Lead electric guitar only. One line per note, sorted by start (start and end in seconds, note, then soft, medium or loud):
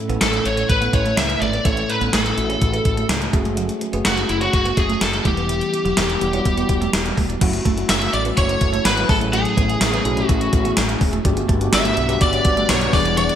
0.22 0.46 A4 medium
0.46 0.68 C#5 medium
0.69 0.94 B4 loud
0.94 1.17 C#5 medium
1.18 1.41 E5 loud
1.42 1.65 D5 medium
1.66 1.90 C#5 medium
1.90 2.12 B4 medium
2.14 3.06 A4 medium
4.06 4.29 F#4 medium
4.30 4.41 E4 medium
4.42 4.53 F#4 medium
4.54 4.78 F#4 loud
4.78 5.00 G#4 loud
5.02 5.24 A4 loud
5.26 6.90 G4 medium
7.90 8.13 E5 loud
8.14 8.20 D5 loud
8.38 8.82 C#5 loud
8.86 9.09 B4 medium
9.10 9.16 A4 medium
9.33 10.27 G#4 medium
10.27 10.73 F#4 medium
11.74 12.22 E5 loud
12.22 12.69 D5 loud
12.70 12.94 C#5 medium
12.94 13.17 D5 medium
13.18 13.35 D5 loud